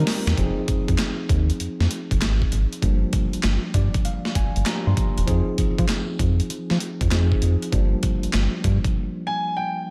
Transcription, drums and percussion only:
0.07 snare loud
0.07 open hi-hat medium
0.27 snare loud
0.27 closed hi-hat medium
0.38 kick loud
0.38 closed hi-hat medium
0.68 kick medium
0.68 closed hi-hat medium
0.88 kick medium
0.88 closed hi-hat soft
0.98 snare loud
0.98 clap medium
0.98 closed hi-hat medium
1.29 kick loud
1.29 closed hi-hat medium
1.50 closed hi-hat soft
1.60 closed hi-hat medium
1.81 snare medium
1.91 closed hi-hat medium
2.11 kick medium
2.11 closed hi-hat soft
2.21 snare loud
2.21 clap medium
2.21 closed hi-hat medium
2.42 kick medium
2.52 closed hi-hat medium
2.73 closed hi-hat soft
2.82 kick medium
2.82 closed hi-hat medium
3.13 kick medium
3.13 closed hi-hat medium
3.33 closed hi-hat soft
3.43 snare loud
3.43 clap medium
3.43 closed hi-hat medium
3.74 kick medium
3.74 closed hi-hat medium
3.94 kick medium
3.94 closed hi-hat medium
4.05 closed hi-hat medium
4.25 snare medium
4.35 kick medium
4.35 closed hi-hat medium
4.56 closed hi-hat soft
4.66 snare loud
4.66 clap medium
4.66 closed hi-hat medium
4.97 kick medium
4.97 closed hi-hat medium
5.18 closed hi-hat medium
5.28 kick loud
5.28 closed hi-hat medium
5.58 kick medium
5.58 closed hi-hat medium
5.78 kick loud
5.78 closed hi-hat soft
5.88 snare loud
5.88 clap medium
5.88 closed hi-hat medium
6.19 kick medium
6.19 closed hi-hat medium
6.40 closed hi-hat soft
6.50 closed hi-hat medium
6.70 snare medium
6.80 closed hi-hat medium
7.01 kick medium
7.01 closed hi-hat medium
7.11 snare loud
7.11 clap medium
7.11 closed hi-hat medium
7.32 kick medium
7.42 closed hi-hat medium
7.62 closed hi-hat soft
7.72 kick loud
7.72 closed hi-hat medium
8.03 kick medium
8.03 closed hi-hat medium
8.23 closed hi-hat soft
8.33 snare loud
8.33 clap medium
8.33 closed hi-hat medium
8.64 kick loud
8.64 closed hi-hat medium
8.84 kick medium
8.84 closed hi-hat soft

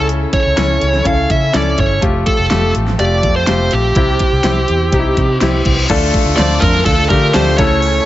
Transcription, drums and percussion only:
0.09 closed hi-hat medium
0.33 kick medium
0.33 closed hi-hat medium
0.57 snare loud
0.57 closed hi-hat medium
0.82 closed hi-hat medium
0.94 snare soft
1.05 kick medium
1.05 closed hi-hat medium
1.30 kick medium
1.30 closed hi-hat medium
1.54 snare loud
1.54 closed hi-hat medium
1.78 kick medium
1.78 closed hi-hat medium
2.02 kick medium
2.02 closed hi-hat medium
2.26 kick medium
2.26 closed hi-hat medium
2.50 snare loud
2.50 closed hi-hat medium
2.75 closed hi-hat medium
2.87 snare soft
2.99 closed hi-hat medium
3.23 kick medium
3.23 closed hi-hat medium
3.47 snare medium
3.47 closed hi-hat medium
3.71 closed hi-hat medium
3.95 kick loud
3.95 closed hi-hat medium
4.19 kick medium
4.19 closed hi-hat medium
4.43 snare medium
4.43 closed hi-hat medium
4.68 closed hi-hat medium
4.92 kick medium
4.92 closed hi-hat medium
5.17 kick medium
5.17 closed hi-hat medium
5.41 snare medium
5.41 closed hi-hat medium
5.65 kick medium
5.65 closed hi-hat medium
5.90 kick loud
5.90 crash loud
5.90 ride medium
6.14 kick medium
6.14 ride medium
6.38 snare loud
6.38 ride medium
6.62 kick loud
6.62 ride medium
6.74 snare soft
6.86 kick medium
6.86 ride medium
7.10 kick medium
7.10 ride medium
7.34 snare loud
7.34 ride medium
7.58 kick loud
7.58 open hi-hat medium
7.58 ride soft
7.82 ride medium

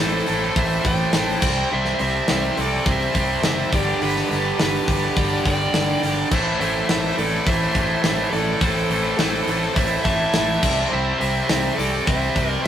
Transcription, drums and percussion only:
0.26 open hi-hat medium
0.56 kick loud
0.56 open hi-hat medium
0.84 kick medium
0.84 open hi-hat medium
1.13 snare loud
1.13 open hi-hat medium
1.42 kick loud
1.42 crash loud
1.85 snare soft
1.99 open hi-hat medium
2.28 snare loud
2.28 open hi-hat medium
2.57 open hi-hat medium
2.86 kick loud
2.86 open hi-hat medium
3.15 kick medium
3.15 open hi-hat medium
3.43 snare loud
3.43 open hi-hat medium
3.72 kick loud
3.72 open hi-hat medium
4.02 open hi-hat medium
4.16 snare soft
4.31 open hi-hat medium
4.59 snare loud
4.59 open hi-hat medium
4.88 kick medium
4.88 open hi-hat medium
5.17 kick loud
5.17 open hi-hat medium
5.45 kick medium
5.45 open hi-hat medium
5.74 snare loud
5.74 open hi-hat medium
6.03 open hi-hat medium
6.32 kick loud
6.32 crash loud
6.61 open hi-hat medium
6.89 snare loud
6.89 open hi-hat medium
7.18 open hi-hat medium
7.47 kick loud
7.47 open hi-hat medium
7.75 kick medium
7.75 open hi-hat medium
8.04 snare loud
8.04 open hi-hat medium
8.33 open hi-hat medium
8.61 kick loud
8.61 open hi-hat medium
8.91 open hi-hat medium
9.19 snare loud
9.19 open hi-hat medium
9.47 open hi-hat medium
9.76 kick loud
9.76 open hi-hat medium
10.05 kick medium
10.05 open hi-hat medium
10.34 snare loud
10.34 open hi-hat medium
10.63 kick loud
10.63 crash loud
11.21 open hi-hat medium
11.49 snare loud
11.49 open hi-hat medium
11.79 open hi-hat medium
12.07 kick loud
12.07 open hi-hat medium
12.36 kick medium
12.36 open hi-hat medium

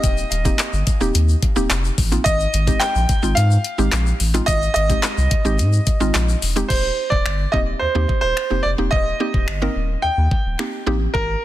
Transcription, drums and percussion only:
0.04 kick loud
0.04 closed hi-hat loud
0.04 shaker medium
0.18 shaker medium
0.31 closed hi-hat medium
0.31 shaker soft
0.45 kick medium
0.45 closed hi-hat medium
0.45 shaker soft
0.58 snare medium
0.58 clap loud
0.58 closed hi-hat loud
0.58 shaker medium
0.73 shaker soft
0.87 kick medium
0.87 closed hi-hat medium
0.87 shaker medium
1.01 shaker medium
1.15 closed hi-hat loud
1.15 shaker medium
1.29 shaker medium
1.43 kick medium
1.43 closed hi-hat medium
1.56 shaker medium
1.70 snare medium
1.70 clap loud
1.70 closed hi-hat medium
1.70 shaker medium
1.84 shaker medium
1.98 kick loud
1.98 open hi-hat loud
2.12 closed hi-hat medium
2.12 shaker medium
2.26 kick loud
2.26 closed hi-hat loud
2.26 shaker medium
2.40 shaker soft
2.53 closed hi-hat medium
2.53 shaker soft
2.67 kick loud
2.67 closed hi-hat medium
2.67 shaker soft
2.80 snare medium
2.80 clap loud
2.80 closed hi-hat loud
2.80 shaker medium
2.95 shaker medium
3.09 kick medium
3.09 closed hi-hat medium
3.09 shaker medium
3.23 shaker medium
3.37 closed hi-hat loud
3.37 shaker medium
3.51 shaker medium
3.64 closed hi-hat medium
3.79 shaker medium
3.92 snare medium
3.92 clap loud
3.92 closed hi-hat medium
3.92 shaker medium
4.07 shaker medium
4.20 open hi-hat loud
4.34 closed hi-hat medium
4.34 shaker medium
4.48 kick loud
4.48 closed hi-hat loud
4.48 shaker medium
4.62 shaker soft
4.76 closed hi-hat medium
4.90 kick loud
4.90 closed hi-hat medium
4.90 shaker soft
5.02 snare medium
5.02 clap loud
5.02 closed hi-hat loud
5.02 shaker medium
5.18 shaker soft
5.31 kick medium
5.31 closed hi-hat medium
5.45 shaker soft
5.59 closed hi-hat loud
5.59 shaker medium
5.73 shaker medium
5.87 kick medium
5.87 closed hi-hat medium
5.87 shaker medium
6.01 shaker medium
6.14 snare medium
6.14 clap loud
6.14 closed hi-hat medium
6.14 shaker medium
6.29 shaker medium
6.42 open hi-hat loud
6.42 shaker soft
6.57 closed hi-hat soft
6.57 shaker medium
6.70 kick loud
6.70 crash medium
7.12 kick medium
7.26 finger snap loud
7.54 kick medium
8.09 kick medium
8.37 finger snap loud
8.92 kick loud
9.34 kick medium
9.48 finger snap loud
10.31 kick medium
10.59 finger snap loud
11.15 kick loud

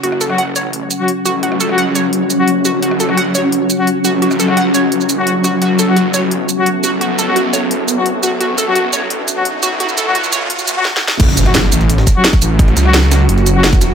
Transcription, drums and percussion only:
0.04 closed hi-hat medium
0.12 cross-stick soft
0.21 closed hi-hat loud
0.21 shaker medium
0.30 cross-stick soft
0.38 closed hi-hat medium
0.56 closed hi-hat medium
0.56 shaker medium
0.73 closed hi-hat medium
0.91 closed hi-hat loud
0.91 shaker medium
1.08 closed hi-hat medium
1.26 closed hi-hat loud
1.26 shaker medium
1.43 closed hi-hat medium
1.52 cross-stick soft
1.61 closed hi-hat loud
1.61 shaker medium
1.69 cross-stick soft
1.78 closed hi-hat medium
1.95 closed hi-hat medium
1.95 shaker medium
2.13 closed hi-hat medium
2.30 closed hi-hat loud
2.30 shaker medium
2.48 closed hi-hat medium
2.65 closed hi-hat medium
2.65 shaker medium
2.82 closed hi-hat medium
2.91 cross-stick soft
3.00 closed hi-hat medium
3.00 shaker medium
3.09 cross-stick soft
3.17 closed hi-hat medium
3.35 closed hi-hat medium
3.35 shaker medium
3.52 closed hi-hat medium
3.70 closed hi-hat medium
3.70 shaker medium
3.87 closed hi-hat medium
4.05 closed hi-hat medium
4.05 shaker medium
4.22 closed hi-hat medium
4.31 cross-stick soft
4.31 shaker soft
4.40 closed hi-hat medium
4.40 shaker medium
4.48 cross-stick soft
4.57 closed hi-hat medium
4.74 closed hi-hat medium
4.74 shaker medium
4.92 closed hi-hat medium
5.01 shaker soft
5.09 closed hi-hat medium
5.09 shaker medium
5.27 closed hi-hat medium
5.44 cross-stick soft
5.44 closed hi-hat medium
5.44 shaker medium
5.62 closed hi-hat medium
5.79 closed hi-hat medium
5.79 shaker medium
5.97 closed hi-hat medium
6.14 closed hi-hat medium
6.14 shaker medium
6.31 closed hi-hat medium
6.49 closed hi-hat medium
6.49 shaker medium
6.66 closed hi-hat medium
6.84 closed hi-hat medium
6.84 shaker medium
7.01 closed hi-hat medium
7.19 closed hi-hat loud
7.19 shaker medium
7.36 closed hi-hat medium
7.54 closed hi-hat medium
7.54 shaker medium
7.71 closed hi-hat medium
7.88 closed hi-hat medium
7.88 shaker medium
8.06 closed hi-hat medium
8.23 closed hi-hat medium
8.23 shaker medium
8.41 closed hi-hat medium
8.58 closed hi-hat loud
8.58 shaker medium
8.75 closed hi-hat medium
8.93 closed hi-hat medium
8.93 shaker medium
9.10 closed hi-hat medium
9.28 closed hi-hat loud
9.28 shaker medium
9.45 closed hi-hat medium
9.63 closed hi-hat loud
9.63 shaker medium
9.80 closed hi-hat medium
9.89 shaker soft
9.98 closed hi-hat loud
9.98 shaker medium
10.15 closed hi-hat medium
10.24 shaker soft
10.33 closed hi-hat loud
10.33 shaker medium
10.50 closed hi-hat medium
10.59 shaker soft
10.68 closed hi-hat loud
10.68 shaker medium
10.85 snare medium
10.97 snare medium
11.08 snare loud
11.20 kick loud
11.20 closed hi-hat medium
11.20 crash loud
11.28 cross-stick soft
11.37 closed hi-hat medium
11.37 closed hi-hat loud
11.37 shaker medium
11.46 cross-stick soft
11.46 closed hi-hat soft
11.55 snare loud
11.55 closed hi-hat medium
11.72 closed hi-hat medium
11.72 closed hi-hat loud
11.72 shaker medium
11.81 closed hi-hat soft
11.89 closed hi-hat medium
11.98 snare medium
12.07 kick medium
12.07 snare soft
12.07 closed hi-hat loud
12.07 closed hi-hat medium
12.07 shaker medium
12.24 snare loud
12.24 closed hi-hat medium
12.33 kick loud
12.33 shaker soft
12.42 closed hi-hat medium
12.42 closed hi-hat loud
12.42 shaker medium
12.59 kick loud
12.59 closed hi-hat medium
12.68 cross-stick soft
12.68 closed hi-hat soft
12.77 snare soft
12.77 closed hi-hat loud
12.77 closed hi-hat medium
12.77 shaker medium
12.85 cross-stick soft
12.94 snare loud
12.94 closed hi-hat medium
13.03 closed hi-hat soft
13.12 cross-stick soft
13.12 snare loud
13.12 closed hi-hat medium
13.12 closed hi-hat loud
13.12 shaker medium
13.29 closed hi-hat medium
13.38 closed hi-hat soft
13.46 closed hi-hat medium
13.46 closed hi-hat loud
13.46 shaker medium
13.64 snare loud
13.64 closed hi-hat medium
13.73 kick loud
13.73 shaker soft
13.81 snare soft
13.81 closed hi-hat medium
13.81 shaker medium

